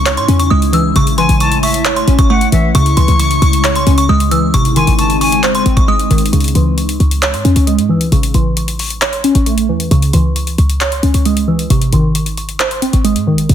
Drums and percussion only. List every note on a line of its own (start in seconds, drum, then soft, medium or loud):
0.06 clap loud
0.06 closed hi-hat medium
0.17 closed hi-hat medium
0.28 closed hi-hat medium
0.40 closed hi-hat medium
0.62 closed hi-hat medium
0.73 closed hi-hat medium
0.96 closed hi-hat medium
1.07 closed hi-hat medium
1.18 closed hi-hat medium
1.29 closed hi-hat medium
1.40 closed hi-hat medium
1.52 closed hi-hat medium
1.63 open hi-hat medium
1.74 closed hi-hat medium
1.85 clap loud
1.85 closed hi-hat medium
1.96 closed hi-hat soft
2.08 closed hi-hat medium
2.19 kick medium
2.19 closed hi-hat medium
2.41 closed hi-hat medium
2.52 closed hi-hat medium
2.75 closed hi-hat medium
2.86 closed hi-hat medium
2.97 closed hi-hat medium
3.08 closed hi-hat medium
3.20 closed hi-hat medium
3.31 closed hi-hat medium
3.42 closed hi-hat medium
3.53 closed hi-hat medium
3.64 clap loud
3.64 closed hi-hat medium
3.75 closed hi-hat medium
3.87 closed hi-hat medium
3.98 closed hi-hat medium
4.20 closed hi-hat medium
4.31 closed hi-hat medium
4.54 closed hi-hat medium
4.65 closed hi-hat medium
4.76 closed hi-hat medium
4.87 closed hi-hat medium
4.99 closed hi-hat loud
5.10 closed hi-hat medium
5.21 open hi-hat medium
5.32 closed hi-hat medium
5.43 clap loud
5.43 closed hi-hat medium
5.55 closed hi-hat medium
5.66 closed hi-hat medium
5.77 kick medium
5.77 closed hi-hat medium
5.99 closed hi-hat medium
6.11 closed hi-hat soft
6.18 closed hi-hat soft
6.26 closed hi-hat medium
6.33 closed hi-hat medium
6.40 closed hi-hat medium
6.44 closed hi-hat medium
6.48 closed hi-hat medium
6.55 closed hi-hat medium
6.78 closed hi-hat medium
6.89 closed hi-hat medium
7.00 closed hi-hat soft
7.11 closed hi-hat medium
7.22 clap loud
7.22 closed hi-hat medium
7.34 closed hi-hat soft
7.45 closed hi-hat medium
7.56 closed hi-hat medium
7.67 closed hi-hat medium
7.79 closed hi-hat medium
8.01 closed hi-hat medium
8.12 closed hi-hat medium
8.23 closed hi-hat medium
8.34 closed hi-hat medium
8.57 closed hi-hat medium
8.68 closed hi-hat medium
8.79 closed hi-hat soft
8.79 open hi-hat medium
8.90 closed hi-hat medium
9.02 clap loud
9.02 closed hi-hat medium
9.13 closed hi-hat soft
9.24 closed hi-hat medium
9.35 closed hi-hat medium
9.46 closed hi-hat medium
9.58 closed hi-hat medium
9.80 closed hi-hat medium
9.91 closed hi-hat medium
10.02 closed hi-hat medium
10.13 closed hi-hat medium
10.36 closed hi-hat medium
10.47 closed hi-hat medium
10.58 closed hi-hat soft
10.70 closed hi-hat medium
10.81 clap loud
10.81 closed hi-hat medium
10.92 closed hi-hat soft
11.03 closed hi-hat medium
11.14 closed hi-hat medium
11.25 closed hi-hat medium
11.37 closed hi-hat medium
11.59 closed hi-hat medium
11.70 closed hi-hat medium
11.82 closed hi-hat medium
11.93 closed hi-hat medium
12.15 closed hi-hat medium
12.26 closed hi-hat medium
12.37 closed hi-hat medium
12.49 closed hi-hat soft
12.60 clap loud
12.60 closed hi-hat medium
12.71 closed hi-hat soft
12.82 closed hi-hat medium
12.93 closed hi-hat medium
13.05 closed hi-hat medium
13.16 closed hi-hat medium
13.38 closed hi-hat medium
13.49 closed hi-hat medium